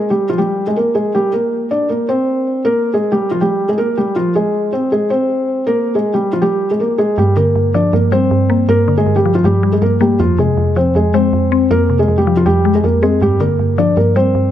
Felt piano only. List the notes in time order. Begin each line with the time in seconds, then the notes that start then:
0.10 G3 G4
0.30 F3 F4
0.38 G3 G4
0.67 G#3 G#4
0.76 A#3 A#4
0.95 G#3 G#4
1.15 G3 G4
1.33 A#3 A#4
1.71 D4 D5
1.89 A#3 A#4
2.09 C4 C5
2.65 A#3 A#4
2.94 G#3 G#4
3.12 G3 G4
3.31 F3 F4
3.41 G3 G4
3.69 G#3 G#4
3.78 A#3 A#4
3.97 G3 G4
4.16 F3 F4
4.35 G#3 G#4
4.73 C4 C5
4.92 G#3 G#4
5.10 C4 C5
5.67 A#3 A#4
5.95 G#3 G#4
6.14 G3 G4
6.33 F3 F4
6.42 G3 G4
6.71 G#3 G#4
6.80 A#3 A#4
6.98 G#3 G#4
7.18 G3 G4
7.36 A#3 A#4
7.75 D4 D5
7.93 A#3 A#4
8.12 C4 C5
8.69 A#3 A#4
8.97 G#3 G#4
9.16 G3 G4
9.35 F3 F4
9.45 G3 G4
9.72 G#3 G#4
9.82 A#3 A#4
10.01 G3 G4
10.20 F3 F4
10.39 G#3 G#4
10.77 C4 C5
10.96 G#3 G#4
11.14 C4 C5
11.71 A#3 A#4
11.99 G#3 G#4
12.18 G3 G4
12.37 F3 F4
12.46 G3 G4
12.75 G#3 G#4
12.84 A#3 A#4
13.02 G#3 G#4
13.22 G3 G4
13.40 A#3 A#4
13.78 D4 D5
13.97 A#3 A#4
14.16 C4 C5